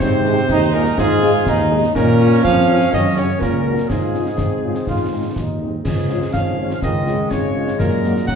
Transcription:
0.00 tuba G#2, euphonium C3, trombone section C4, woodwind section C5, cornet C5, concert bass drum, snare, crash
0.25 french horn section G#3 D#4 G#4, snare
0.37 snare
0.49 tuba D#2, trombone section D#4, concert bass drum, snare
0.73 euphonium A#2, french horn section G#3 D#4 G#4, cornet A#4, woodwind section A#4
0.85 snare
0.97 euphonium G#2, tuba G#2, trombone section F4, woodwind section G#4, cornet G#4, concert bass drum, snare
1.22 french horn section G#3 D#4 G#4, snare
1.46 tuba D#2, trombone section D#4, concert bass drum, snare
1.71 french horn section G#3 D#4 G#4
1.83 snare
1.94 euphonium A#2, tuba A#2, trombone section C#4, woodwind section A#4, cornet A#4, concert bass drum, snare, crash
2.20 french horn section C#4 F4, snare
2.32 snare
2.43 tuba F2, euphonium F3, woodwind section F5, cornet F5, concert bass drum, snare
2.69 french horn section C#4 F4
2.81 snare
2.91 tuba F#2, euphonium D#3, woodwind section D#5, cornet D#5, concert bass drum, snare
3.15 euphonium C#3, french horn section C#4 F#4, woodwind section C#5, cornet C#5, snare
3.39 tuba C#2, euphonium A#2, woodwind section A#4, cornet A#4, concert bass drum, snare
3.65 french horn section C#4 F#4
3.78 snare
3.87 tuba G#2, euphonium G#2, trombone section F4, woodwind section G#4, cornet G#4, concert bass drum, snare, crash
4.14 french horn section G#3 C#4 F4, snare
4.26 snare
4.38 tuba G#2, trombone section C4, concert bass drum, snare
4.64 french horn section G#3 C#4 F4
4.75 snare
4.87 tuba G#2, trombone section F4, concert bass drum, snare
5.12 french horn section G#3 C4 D#4
5.35 tuba D#2, trombone section D#4, concert bass drum, snare
5.62 french horn section G#3 C4 D#4
5.84 tuba C#2, euphonium G#2, woodwind section G#4, cornet G#4, concert bass drum, snare, crash
6.09 french horn section G#3 C#4 F4, snare
6.22 snare
6.33 tuba G#1, euphonium F3, trombone section C#4, woodwind section F5, cornet F5, concert bass drum, snare
6.58 french horn section G#3 C#4 F4
6.71 snare
6.82 tuba C#2, euphonium D#3, trombone section G#3, woodwind section D#5, cornet D#5, concert bass drum, snare
7.07 french horn section G#3 C#4 F4, snare
7.30 tuba G#1, euphonium C#3, woodwind section C#5, cornet C#5, concert bass drum, snare
7.55 french horn section G#3 C#4 F4
7.68 snare
7.79 tuba F#2, euphonium A#2, woodwind section A#4, cornet A#4, concert bass drum, snare, crash
8.04 french horn section F#3 A#3 D#4, snare
8.16 snare
8.27 tuba F#2, euphonium F#3, trombone section A#3, cornet F#5, woodwind section F#5, concert bass drum, snare

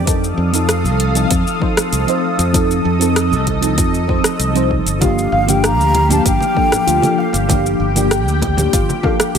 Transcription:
Already playing: fingered electric bass F2
0.05 fm electric piano F3 C4 D#4 A4, analog synth pad A4 F5 D#6, kick, closed hi-hat, shaker
0.24 shaker
0.37 fingered electric bass F2
0.52 fm electric piano F3 C4 D#4 A4, closed hi-hat, shaker
0.69 cross-stick, closed hi-hat, shaker
0.84 fingered electric bass C2, shaker
1.00 closed hi-hat
1.13 fm electric piano F3 C4 D#4 A4, closed hi-hat, shaker
1.31 fingered electric bass F2, kick, closed hi-hat, shaker
1.47 shaker
1.59 fm electric piano F3 C4 D#4 C5, kick
1.77 cross-stick, closed hi-hat, shaker
1.92 fingered electric bass C2, closed hi-hat, shaker
2.06 fm electric piano F3 C4 D#4 C5, closed hi-hat, shaker
2.39 fingered electric bass F2, closed hi-hat, shaker
2.53 fm electric piano F3 C4 D#4 A4, analog synth pad D#5, kick, closed hi-hat, shaker
2.71 shaker
2.85 fingered electric bass F2
2.99 fm electric piano F3 C4 D#4 A4, closed hi-hat, shaker
3.16 cross-stick, closed hi-hat, shaker
3.32 fingered electric bass C2, shaker
3.47 kick, closed hi-hat
3.61 fm electric piano F3 C4 D#4 A4, closed hi-hat, shaker
3.78 fingered electric bass F2, kick, closed hi-hat, shaker
3.94 shaker
4.07 fm electric piano F3 C4 D#4 C5, kick
4.24 cross-stick, closed hi-hat, shaker
4.39 fingered electric bass C2, closed hi-hat, shaker
4.54 fm electric piano F3 C4 D#4 C5, closed hi-hat, shaker
4.71 kick
4.86 fingered electric bass G1, closed hi-hat, shaker
5.00 fm electric piano F3 A#3 D4 G4, synth pluck F4, analog synth pad G4 F5, flute F5, kick, closed hi-hat, high conga, shaker
5.18 shaker
5.32 fingered electric bass G1, synth pluck F5
5.46 fm electric piano F3 A#3 D4 G4, flute G5, closed hi-hat, high conga, shaker
5.63 synth pluck G4, flute A#5, cross-stick, closed hi-hat, shaker
5.79 fingered electric bass D2, shaker
5.94 closed hi-hat, high conga
6.09 fm electric piano F3 A#3 D4 G4, flute A5, closed hi-hat, muted conga, low conga, shaker
6.25 fingered electric bass G1, synth pluck G4, flute G5, kick, closed hi-hat, shaker
6.40 muted conga, high conga, shaker
6.55 fm electric piano F3 A#3 D4 A4, kick
6.72 cross-stick, closed hi-hat, low conga, shaker
6.87 fingered electric bass D2, synth pluck F4, closed hi-hat, shaker
7.01 fm electric piano F3 A#3 D4 A4, closed hi-hat, high conga, shaker
7.18 synth pluck F5, flute F5
7.33 fingered electric bass G1, closed hi-hat, muted conga, shaker
7.47 fm electric piano F3 A#3 D4 G4, synth pluck G4, analog synth pad G5, kick, closed hi-hat, high conga, shaker
7.66 shaker
7.80 fingered electric bass G1
7.94 fm electric piano F3 A#3 D4 G4, closed hi-hat, high conga, shaker
8.11 synth pluck G4, cross-stick, closed hi-hat, shaker
8.26 fingered electric bass D2, shaker
8.42 kick, closed hi-hat, high conga
8.56 fm electric piano F3 A#3 D4 G4, closed hi-hat, muted conga, low conga, shaker
8.73 fingered electric bass G1, synth pluck F4, kick, closed hi-hat, shaker
8.89 high conga, shaker
9.02 fm electric piano F3 A#3 D4 A4, synth pluck F5, kick, muted conga
9.20 cross-stick, closed hi-hat, shaker
9.35 fingered electric bass D2, synth pluck G4, closed hi-hat

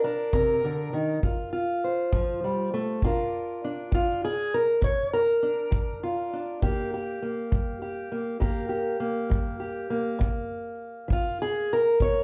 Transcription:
0.04 steel-string acoustic guitar D4 A#4
0.33 steel-string acoustic guitar C3 A#4, kick
0.65 steel-string acoustic guitar D3
0.93 steel-string acoustic guitar D#3
1.23 steel-string acoustic guitar F3 F4, kick
1.53 steel-string acoustic guitar F4
1.84 steel-string acoustic guitar C5
2.12 steel-string acoustic guitar F3, kick
2.44 steel-string acoustic guitar G3
2.74 steel-string acoustic guitar A3
3.02 steel-string acoustic guitar A#2 D4 F4 A#4, kick
3.64 steel-string acoustic guitar D4
3.92 steel-string acoustic guitar F3 F4, kick
4.25 steel-string acoustic guitar G#4
4.54 steel-string acoustic guitar A#4
4.81 steel-string acoustic guitar A#2 C#5, kick
5.13 steel-string acoustic guitar A#4
5.43 steel-string acoustic guitar D4
5.71 steel-string acoustic guitar F3, kick
6.03 steel-string acoustic guitar F4
6.33 steel-string acoustic guitar D4
6.62 steel-string acoustic guitar D#3 A#3 G4, kick
6.94 steel-string acoustic guitar G4
7.22 steel-string acoustic guitar A#3
7.52 steel-string acoustic guitar G3, kick
7.82 steel-string acoustic guitar G4
8.12 steel-string acoustic guitar A#3
8.40 steel-string acoustic guitar D#3 A#3 G4 A#4, kick
8.69 steel-string acoustic guitar G4
9.00 steel-string acoustic guitar A#3
9.30 steel-string acoustic guitar G3, kick
9.60 steel-string acoustic guitar G4
9.90 steel-string acoustic guitar A#3
10.19 steel-string acoustic guitar A#2, kick
11.08 steel-string acoustic guitar F3, kick
11.13 steel-string acoustic guitar F4
11.42 steel-string acoustic guitar G#4
11.73 steel-string acoustic guitar A#4
12.00 steel-string acoustic guitar A#2 C#5, kick

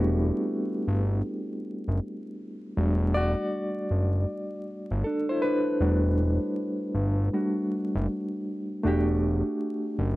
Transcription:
Already playing: analog synth bass E1, reed electric piano G3 A3 B3 C4 D4 E4 F#4 G4 A4 B4
0.88 analog synth bass G1
1.88 analog synth bass F#1
2.77 analog synth bass E1, reed electric piano G3 A3 D4 F#4
3.14 reed electric piano F#4 D5
3.91 analog synth bass F#1
4.91 analog synth bass G1
5.04 reed electric piano D4 A4
5.29 reed electric piano E4 C5
5.42 reed electric piano D4 B4
5.81 analog synth bass E1, reed electric piano G3 A3 D4 F#4
6.94 analog synth bass G1
7.33 reed electric piano G3 A3 D4 F#4
7.95 analog synth bass F#1
8.83 analog synth bass E1, reed electric piano A3 D4 F#4
8.88 reed electric piano G4
9.99 analog synth bass F#1

